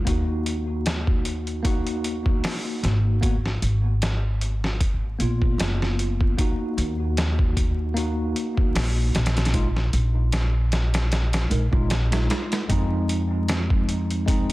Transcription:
0.05 2.40 D#2 medium
0.05 1.59 A#3 medium
0.05 1.60 D#4 medium
0.05 1.61 F#4 medium
0.05 kick loud
0.05 closed hi-hat medium
0.46 closed hi-hat medium
0.86 snare loud
0.86 closed hi-hat medium
1.07 kick medium
1.25 closed hi-hat medium
1.47 closed hi-hat soft
1.63 3.17 A#3 medium
1.63 3.18 D#4 medium
1.63 3.19 F#4 loud
1.63 kick loud
1.63 closed hi-hat medium
1.87 closed hi-hat soft
2.04 closed hi-hat medium
2.26 kick medium
2.44 snare loud
2.44 open hi-hat medium
2.83 3.59 G#1 medium
2.83 snare soft
2.83 closed hi-hat medium
3.21 3.36 A#3 medium
3.21 3.36 B3 medium
3.21 3.37 F#4 medium
3.21 kick loud
3.21 closed hi-hat medium
3.45 snare soft
3.62 5.16 G#1 medium
3.62 closed hi-hat medium
4.02 snare loud
4.02 closed hi-hat medium
4.41 closed hi-hat medium
4.64 snare soft
4.80 kick loud
4.80 closed hi-hat medium
5.18 5.55 A#1 medium
5.18 6.33 A#3 medium
5.18 6.34 B3 medium
5.18 6.35 F4 medium
5.18 closed hi-hat medium
5.42 kick medium
5.58 6.34 F#1 medium
5.58 snare loud
5.58 closed hi-hat medium
5.82 snare medium
5.99 closed hi-hat medium
6.21 kick medium
6.37 7.91 A#3 medium
6.37 7.92 D#4 medium
6.37 7.93 F#4 medium
6.37 kick loud
6.37 closed hi-hat medium
6.77 8.32 D#2 medium
6.77 closed hi-hat medium
7.17 snare loud
7.17 closed hi-hat medium
7.39 kick medium
7.57 kick medium
7.57 closed hi-hat medium
7.94 9.49 A#3 medium
7.94 9.50 D#4 medium
7.94 9.51 F#4 medium
7.94 closed hi-hat medium
8.36 closed hi-hat medium
8.57 kick medium
8.75 9.10 A#1 medium
8.75 snare loud
8.75 open hi-hat medium
9.15 9.90 A#1 medium
9.15 snare medium
9.15 closed hi-hat medium
9.26 snare medium
9.26 closed hi-hat medium
9.37 snare medium
9.37 closed hi-hat medium
9.45 snare medium
9.45 closed hi-hat medium
9.53 9.67 G#3 medium
9.53 9.67 D#4 medium
9.53 9.68 F4 medium
9.53 kick loud
9.53 closed hi-hat medium
9.76 snare soft
9.93 11.48 A#1 medium
9.93 closed hi-hat medium
10.32 snare loud
10.32 closed hi-hat medium
10.72 snare medium
10.72 closed hi-hat medium
10.94 snare medium
10.94 closed hi-hat medium
11.12 snare medium
11.12 closed hi-hat medium
11.33 snare loud
11.33 closed hi-hat medium
11.50 11.70 A#1 medium
11.50 11.64 G#3 medium
11.50 11.65 D#4 medium
11.50 11.65 A#4 medium
11.50 closed hi-hat medium
11.72 12.27 A#1 medium
11.72 11.90 G#3 medium
11.72 11.91 D#4 medium
11.72 11.91 F4 medium
11.72 kick medium
11.90 snare loud
11.90 closed hi-hat medium
12.11 12.65 G#3 medium
12.11 12.65 D#4 medium
12.11 12.66 F4 medium
12.11 snare loud
12.11 closed hi-hat medium
12.30 snare loud
12.30 closed hi-hat medium
12.52 snare medium
12.52 closed hi-hat medium
12.68 14.53 F2 medium
12.68 14.23 G#3 medium
12.68 14.23 C4 medium
12.68 14.24 D#4 medium
12.68 kick loud
12.68 closed hi-hat medium
13.09 closed hi-hat medium
13.49 snare loud
13.49 closed hi-hat medium
13.70 kick medium
13.89 closed hi-hat medium
14.10 closed hi-hat soft
14.26 14.53 G#3 medium
14.26 14.53 C4 medium
14.26 14.53 D#4 medium
14.26 kick loud
14.26 closed hi-hat medium

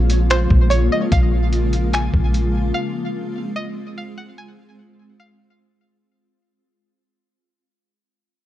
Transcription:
0.00 0.47 A#1 loud
0.00 2.72 C#3 medium
0.00 2.72 F3 medium
0.00 2.72 G#3 medium
0.00 2.72 A#3 medium
0.00 5.98 F4 medium
0.00 0.27 C#5 loud
0.10 closed hi-hat medium
0.30 0.69 C5 medium
0.30 finger snap loud
0.30 closed hi-hat medium
0.50 0.90 A#1 loud
0.50 kick medium
0.70 0.90 C#5 medium
0.70 closed hi-hat medium
0.92 1.11 D#5 medium
1.12 2.10 A#1 loud
1.12 1.90 F5 loud
1.12 kick loud
1.12 closed hi-hat medium
1.53 closed hi-hat medium
1.73 closed hi-hat medium
1.93 2.32 G#5 medium
1.93 finger snap loud
1.93 closed hi-hat medium
2.14 2.72 A#1 loud
2.14 kick medium
2.34 closed hi-hat medium
2.74 5.98 G#3 medium
2.74 5.98 C4 medium
2.74 3.52 F5 loud
3.56 3.95 D#5 loud
3.98 4.17 F5 medium
4.18 4.37 F#5 loud
4.38 5.16 G#5 loud
5.20 5.58 F5 loud

